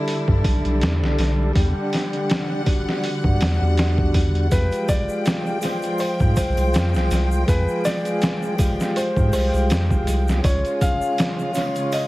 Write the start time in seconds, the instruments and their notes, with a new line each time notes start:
Already playing: string section D3 G3 E4, tonewheel organ G3 D4 A4
0.08 open hi-hat
0.28 analog synth bass G2, kick
0.44 analog synth bass B1, kick, open hi-hat
0.65 analog synth bass B1, closed hi-hat
0.81 analog synth bass E2, snare, open hi-hat
1.01 analog synth bass B1, snare
1.18 analog synth bass B1, snare, open hi-hat
1.53 analog synth bass E2, tonewheel organ G3 D4 G4, string section F#5, kick, open hi-hat
1.93 snare, open hi-hat
2.13 closed hi-hat
2.30 snare, open hi-hat
2.65 tonewheel organ G3 D4 F#4, kick, open hi-hat
2.89 snare
3.04 open hi-hat
3.24 analog synth bass G2, kick
3.41 analog synth bass E2, snare, open hi-hat
3.61 analog synth bass E2
3.77 snare, open hi-hat
3.98 kick
4.14 kick, open hi-hat
4.35 closed hi-hat
4.49 analog synth bass F2, string section F3 G#3 G5, tonewheel organ G#3 F4 G4, felt piano B4, kick, open hi-hat, shaker
4.72 closed hi-hat, shaker
4.89 felt piano D5, kick, open hi-hat, shaker
5.09 shaker
5.26 snare, open hi-hat, shaker
5.46 shaker
5.61 tonewheel organ G#3 F4 C5, snare, open hi-hat, triangle, shaker
5.82 closed hi-hat, shaker
5.98 felt piano C5, open hi-hat, triangle, shaker
6.20 analog synth bass G#2, kick, shaker
6.36 analog synth bass C2, felt piano C5, kick, open hi-hat, shaker
6.57 analog synth bass C2, closed hi-hat, triangle, shaker
6.74 analog synth bass F2, snare, open hi-hat, shaker
6.94 analog synth bass C2, snare, shaker
7.11 analog synth bass C2, snare, open hi-hat, shaker
7.32 shaker
7.46 analog synth bass F2, tonewheel organ G#3 F4 G#4, felt piano B4, kick, open hi-hat, shaker
7.68 shaker
7.85 felt piano D5, snare, open hi-hat, shaker
8.05 closed hi-hat, shaker
8.22 snare, open hi-hat, shaker
8.43 shaker
8.57 tonewheel organ G#3 F4 G4, kick, open hi-hat, triangle, shaker
8.80 snare, shaker
8.96 felt piano C5, open hi-hat, shaker
9.16 analog synth bass G#2, kick, shaker
9.33 analog synth bass C2, felt piano C5, open hi-hat, triangle, shaker
9.53 analog synth bass C2, shaker
9.70 analog synth bass F2, snare, open hi-hat, shaker
9.91 analog synth bass C2, kick, shaker
10.07 analog synth bass C2, open hi-hat, shaker
10.28 snare, shaker
10.43 analog synth bass C#2, string section C#3 F4, tonewheel organ C#4 F4 G#4, felt piano C#5, kick, open hi-hat, shaker
10.65 closed hi-hat, shaker
10.81 felt piano F5, kick, open hi-hat, shaker
11.01 shaker
11.18 snare, open hi-hat, shaker
11.39 shaker
11.54 tonewheel organ C#4 F4 C#5, snare, open hi-hat, triangle, shaker
11.75 closed hi-hat, shaker
11.92 felt piano D#5, open hi-hat, triangle, shaker